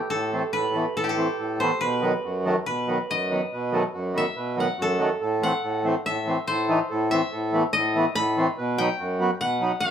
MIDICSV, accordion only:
0, 0, Header, 1, 2, 480
1, 0, Start_track
1, 0, Tempo, 425834
1, 116, Time_signature, 4, 2, 24, 8
1, 5876, Tempo, 419287
1, 11250, End_track
2, 0, Start_track
2, 0, Title_t, "Accordion"
2, 0, Program_c, 0, 21
2, 119, Note_on_c, 0, 45, 78
2, 364, Note_on_c, 0, 52, 68
2, 371, Note_on_c, 0, 57, 59
2, 374, Note_on_c, 0, 60, 76
2, 477, Note_off_c, 0, 45, 0
2, 481, Note_off_c, 0, 52, 0
2, 485, Note_off_c, 0, 57, 0
2, 487, Note_off_c, 0, 60, 0
2, 604, Note_on_c, 0, 45, 66
2, 829, Note_on_c, 0, 52, 71
2, 844, Note_on_c, 0, 57, 65
2, 851, Note_on_c, 0, 59, 70
2, 955, Note_off_c, 0, 52, 0
2, 960, Note_off_c, 0, 45, 0
2, 963, Note_off_c, 0, 57, 0
2, 966, Note_off_c, 0, 59, 0
2, 1088, Note_on_c, 0, 45, 64
2, 1307, Note_on_c, 0, 52, 56
2, 1320, Note_on_c, 0, 57, 56
2, 1326, Note_on_c, 0, 60, 70
2, 1435, Note_off_c, 0, 52, 0
2, 1441, Note_off_c, 0, 57, 0
2, 1443, Note_off_c, 0, 45, 0
2, 1444, Note_off_c, 0, 60, 0
2, 1562, Note_on_c, 0, 45, 61
2, 1803, Note_on_c, 0, 52, 73
2, 1813, Note_on_c, 0, 57, 66
2, 1819, Note_on_c, 0, 59, 82
2, 1920, Note_off_c, 0, 45, 0
2, 1923, Note_off_c, 0, 52, 0
2, 1928, Note_off_c, 0, 57, 0
2, 1931, Note_off_c, 0, 59, 0
2, 2043, Note_on_c, 0, 47, 78
2, 2271, Note_on_c, 0, 51, 69
2, 2278, Note_on_c, 0, 54, 64
2, 2289, Note_on_c, 0, 59, 80
2, 2397, Note_off_c, 0, 51, 0
2, 2401, Note_off_c, 0, 47, 0
2, 2401, Note_off_c, 0, 54, 0
2, 2407, Note_off_c, 0, 59, 0
2, 2529, Note_on_c, 0, 42, 64
2, 2759, Note_on_c, 0, 51, 88
2, 2766, Note_on_c, 0, 54, 76
2, 2776, Note_on_c, 0, 57, 93
2, 2882, Note_off_c, 0, 51, 0
2, 2884, Note_off_c, 0, 42, 0
2, 2885, Note_off_c, 0, 54, 0
2, 2890, Note_off_c, 0, 57, 0
2, 3005, Note_on_c, 0, 47, 66
2, 3236, Note_on_c, 0, 51, 63
2, 3241, Note_on_c, 0, 54, 53
2, 3249, Note_on_c, 0, 59, 71
2, 3360, Note_off_c, 0, 51, 0
2, 3362, Note_off_c, 0, 47, 0
2, 3363, Note_off_c, 0, 54, 0
2, 3366, Note_off_c, 0, 59, 0
2, 3491, Note_on_c, 0, 42, 59
2, 3720, Note_on_c, 0, 51, 69
2, 3725, Note_on_c, 0, 54, 71
2, 3738, Note_on_c, 0, 59, 74
2, 3842, Note_off_c, 0, 51, 0
2, 3844, Note_off_c, 0, 42, 0
2, 3844, Note_off_c, 0, 54, 0
2, 3850, Note_off_c, 0, 59, 0
2, 3974, Note_on_c, 0, 47, 74
2, 4192, Note_on_c, 0, 51, 88
2, 4203, Note_on_c, 0, 54, 78
2, 4209, Note_on_c, 0, 57, 91
2, 4317, Note_off_c, 0, 51, 0
2, 4322, Note_off_c, 0, 54, 0
2, 4325, Note_off_c, 0, 47, 0
2, 4325, Note_off_c, 0, 57, 0
2, 4438, Note_on_c, 0, 42, 74
2, 4665, Note_on_c, 0, 51, 73
2, 4677, Note_on_c, 0, 54, 61
2, 4682, Note_on_c, 0, 59, 67
2, 4792, Note_off_c, 0, 51, 0
2, 4795, Note_off_c, 0, 42, 0
2, 4798, Note_off_c, 0, 54, 0
2, 4801, Note_off_c, 0, 59, 0
2, 4914, Note_on_c, 0, 47, 72
2, 5144, Note_on_c, 0, 51, 71
2, 5149, Note_on_c, 0, 54, 62
2, 5157, Note_on_c, 0, 59, 65
2, 5271, Note_off_c, 0, 47, 0
2, 5271, Note_off_c, 0, 51, 0
2, 5273, Note_off_c, 0, 54, 0
2, 5277, Note_off_c, 0, 59, 0
2, 5393, Note_on_c, 0, 42, 76
2, 5621, Note_on_c, 0, 51, 64
2, 5629, Note_on_c, 0, 54, 60
2, 5641, Note_on_c, 0, 57, 78
2, 5747, Note_off_c, 0, 51, 0
2, 5749, Note_off_c, 0, 42, 0
2, 5751, Note_off_c, 0, 54, 0
2, 5757, Note_off_c, 0, 57, 0
2, 5870, Note_on_c, 0, 45, 74
2, 6108, Note_on_c, 0, 52, 72
2, 6116, Note_on_c, 0, 57, 61
2, 6123, Note_on_c, 0, 60, 67
2, 6231, Note_off_c, 0, 45, 0
2, 6232, Note_off_c, 0, 52, 0
2, 6236, Note_off_c, 0, 57, 0
2, 6240, Note_off_c, 0, 60, 0
2, 6355, Note_on_c, 0, 45, 69
2, 6588, Note_on_c, 0, 52, 78
2, 6601, Note_on_c, 0, 57, 63
2, 6609, Note_on_c, 0, 60, 78
2, 6714, Note_off_c, 0, 52, 0
2, 6715, Note_off_c, 0, 45, 0
2, 6720, Note_off_c, 0, 57, 0
2, 6724, Note_off_c, 0, 60, 0
2, 6852, Note_on_c, 0, 45, 73
2, 7080, Note_on_c, 0, 52, 69
2, 7094, Note_on_c, 0, 57, 57
2, 7098, Note_on_c, 0, 60, 69
2, 7201, Note_off_c, 0, 52, 0
2, 7205, Note_off_c, 0, 45, 0
2, 7208, Note_off_c, 0, 57, 0
2, 7210, Note_off_c, 0, 60, 0
2, 7337, Note_on_c, 0, 45, 74
2, 7561, Note_on_c, 0, 52, 78
2, 7566, Note_on_c, 0, 57, 75
2, 7572, Note_on_c, 0, 63, 85
2, 7682, Note_off_c, 0, 52, 0
2, 7684, Note_off_c, 0, 57, 0
2, 7688, Note_off_c, 0, 45, 0
2, 7688, Note_off_c, 0, 63, 0
2, 7808, Note_on_c, 0, 45, 86
2, 8041, Note_on_c, 0, 52, 71
2, 8052, Note_on_c, 0, 57, 58
2, 8064, Note_on_c, 0, 60, 77
2, 8162, Note_off_c, 0, 52, 0
2, 8163, Note_off_c, 0, 45, 0
2, 8168, Note_off_c, 0, 57, 0
2, 8174, Note_off_c, 0, 60, 0
2, 8291, Note_on_c, 0, 45, 74
2, 8521, Note_on_c, 0, 52, 71
2, 8528, Note_on_c, 0, 57, 60
2, 8543, Note_on_c, 0, 59, 81
2, 8642, Note_off_c, 0, 52, 0
2, 8645, Note_off_c, 0, 45, 0
2, 8646, Note_off_c, 0, 57, 0
2, 8653, Note_off_c, 0, 59, 0
2, 8779, Note_on_c, 0, 45, 73
2, 9008, Note_on_c, 0, 52, 70
2, 9017, Note_on_c, 0, 57, 53
2, 9025, Note_on_c, 0, 59, 79
2, 9126, Note_off_c, 0, 52, 0
2, 9129, Note_off_c, 0, 45, 0
2, 9130, Note_off_c, 0, 57, 0
2, 9134, Note_off_c, 0, 59, 0
2, 9262, Note_on_c, 0, 45, 75
2, 9487, Note_on_c, 0, 52, 73
2, 9494, Note_on_c, 0, 57, 61
2, 9502, Note_on_c, 0, 60, 81
2, 9604, Note_off_c, 0, 52, 0
2, 9608, Note_off_c, 0, 57, 0
2, 9609, Note_off_c, 0, 45, 0
2, 9612, Note_off_c, 0, 60, 0
2, 9729, Note_on_c, 0, 47, 83
2, 9958, Note_on_c, 0, 54, 72
2, 9970, Note_on_c, 0, 59, 60
2, 9980, Note_on_c, 0, 63, 81
2, 10078, Note_off_c, 0, 54, 0
2, 10081, Note_off_c, 0, 47, 0
2, 10085, Note_off_c, 0, 59, 0
2, 10090, Note_off_c, 0, 63, 0
2, 10205, Note_on_c, 0, 42, 70
2, 10430, Note_on_c, 0, 54, 78
2, 10446, Note_on_c, 0, 59, 67
2, 10455, Note_on_c, 0, 66, 80
2, 10553, Note_off_c, 0, 54, 0
2, 10558, Note_off_c, 0, 42, 0
2, 10561, Note_off_c, 0, 59, 0
2, 10566, Note_off_c, 0, 66, 0
2, 10670, Note_on_c, 0, 47, 75
2, 10901, Note_on_c, 0, 54, 74
2, 10911, Note_on_c, 0, 59, 72
2, 10925, Note_on_c, 0, 63, 76
2, 11027, Note_off_c, 0, 47, 0
2, 11027, Note_off_c, 0, 54, 0
2, 11032, Note_off_c, 0, 59, 0
2, 11039, Note_off_c, 0, 63, 0
2, 11154, Note_on_c, 0, 42, 68
2, 11250, Note_off_c, 0, 42, 0
2, 11250, End_track
0, 0, End_of_file